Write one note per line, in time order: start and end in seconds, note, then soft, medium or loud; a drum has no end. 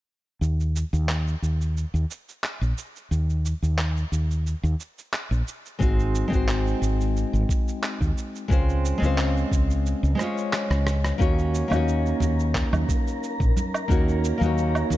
0.41 0.83 D#2 medium
0.41 cabasa soft
0.60 cabasa soft
0.76 cabasa medium
0.93 1.34 D#2 medium
0.93 cabasa soft
1.09 clap medium
1.09 cabasa soft
1.28 cabasa soft
1.42 1.84 D#2 medium
1.42 cabasa medium
1.61 cabasa soft
1.77 cabasa soft
1.94 2.04 D#2 medium
1.94 cabasa soft
2.11 cabasa medium
2.29 cabasa soft
2.44 clap medium
2.44 cabasa soft
2.61 2.72 A#1 medium
2.61 cabasa soft
2.78 cabasa medium
2.96 cabasa soft
3.11 3.53 D#2 medium
3.11 cabasa soft
3.30 cabasa soft
3.46 cabasa medium
3.62 4.03 D#2 medium
3.62 cabasa soft
3.78 clap medium
3.78 cabasa soft
3.97 cabasa soft
4.12 4.54 D#2 medium
4.12 cabasa medium
4.31 cabasa soft
4.47 cabasa soft
4.63 4.74 D#2 medium
4.63 cabasa soft
4.80 cabasa medium
4.98 cabasa soft
5.13 clap medium
5.13 cabasa soft
5.31 5.41 A#1 medium
5.31 cabasa soft
5.48 cabasa medium
5.66 cabasa soft
5.79 6.22 G#1 medium
5.79 6.26 G#3 medium
5.79 6.28 C4 medium
5.79 6.28 D#4 medium
5.79 6.28 F#4 medium
5.79 6.29 C5 medium
5.79 kick loud
5.79 cabasa soft
6.00 cabasa soft
6.15 cabasa medium
6.28 8.44 G#3 medium
6.28 8.45 C4 medium
6.32 6.73 G#1 medium
6.32 8.46 D#4 medium
6.32 8.47 F#4 medium
6.32 8.48 C5 loud
6.32 kick medium
6.32 cabasa soft
6.48 clap loud
6.48 cabasa soft
6.67 cabasa soft
6.82 7.23 G#1 medium
6.82 cabasa medium
7.01 cabasa soft
7.17 cabasa soft
7.33 7.44 G#1 medium
7.33 cabasa soft
7.49 kick loud
7.49 cabasa medium
7.68 cabasa soft
7.83 clap medium
7.83 cabasa soft
8.01 8.11 D#2 medium
8.01 kick medium
8.01 cabasa soft
8.18 cabasa medium
8.36 cabasa soft
8.48 8.92 C#2 medium
8.48 8.97 G#3 medium
8.48 8.97 C4 medium
8.48 8.98 C#4 medium
8.48 8.98 F4 medium
8.48 kick loud
8.48 cabasa soft
8.52 8.99 C5 medium
8.70 cabasa soft
8.85 cabasa medium
8.98 10.14 G#3 medium
8.98 10.15 C4 medium
9.02 9.42 C#2 medium
9.02 10.16 C#4 medium
9.02 10.17 F4 medium
9.02 10.16 C5 medium
9.02 cabasa soft
9.18 clap medium
9.18 cabasa soft
9.37 cabasa soft
9.51 9.93 C#2 medium
9.51 kick medium
9.51 cabasa medium
9.70 cabasa soft
9.86 cabasa soft
10.03 10.13 C#2 medium
10.03 cabasa soft
10.15 11.14 G#3 medium
10.15 11.16 C#4 medium
10.15 11.15 C5 medium
10.19 11.17 F4 medium
10.19 11.18 C#5 loud
10.19 cross-stick medium
10.19 cabasa medium
10.38 cabasa soft
10.53 cross-stick medium
10.53 clap medium
10.53 cabasa soft
10.70 11.11 C#2 medium
10.70 cross-stick medium
10.70 cabasa soft
10.87 cross-stick medium
10.87 cabasa medium
11.04 cross-stick medium
11.04 cabasa soft
11.18 11.62 D#2 medium
11.18 11.66 A#3 medium
11.18 11.67 C#4 medium
11.18 11.67 D#4 medium
11.18 11.68 F#4 medium
11.18 14.97 A#4 medium
11.18 11.68 C#5 loud
11.18 14.97 A#5 medium
11.18 kick loud
11.18 cabasa soft
11.39 cabasa soft
11.55 cabasa medium
11.68 12.12 D#2 medium
11.68 13.84 A#3 medium
11.68 13.85 C#4 medium
11.68 high conga medium
11.68 low woodblock medium
11.72 13.86 D#4 medium
11.72 13.87 F#4 medium
11.72 cabasa soft
11.76 13.88 C#5 loud
11.88 cabasa soft
12.06 cabasa soft
12.20 12.63 D#2 medium
12.20 low conga medium
12.20 cabasa medium
12.40 cabasa soft
12.55 kick medium
12.55 clap medium
12.55 cabasa soft
12.73 12.83 D#2 medium
12.73 high conga medium
12.73 cabasa soft
12.73 low woodblock medium
12.89 kick medium
12.89 cabasa medium
13.07 cabasa soft
13.23 cabasa soft
13.40 13.50 A#1 medium
13.40 kick loud
13.40 cabasa soft
13.57 high conga medium
13.57 cabasa medium
13.74 cabasa soft
13.74 low woodblock medium
13.88 14.31 D#2 medium
13.88 14.36 A#3 medium
13.88 14.37 C#4 medium
13.88 14.37 D#4 medium
13.88 14.38 F#4 medium
13.88 14.38 C#5 loud
13.88 kick loud
13.88 cabasa soft
14.09 cabasa soft
14.24 cabasa medium
14.38 14.82 D#2 medium
14.38 14.97 A#3 medium
14.38 14.97 C#4 medium
14.38 14.97 D#4 medium
14.38 high conga medium
14.42 14.97 F#4 medium
14.42 14.97 C#5 loud
14.42 cabasa soft
14.58 cabasa soft
14.75 cabasa soft
14.75 low woodblock medium
14.90 14.97 D#2 medium
14.90 low conga medium
14.90 cabasa medium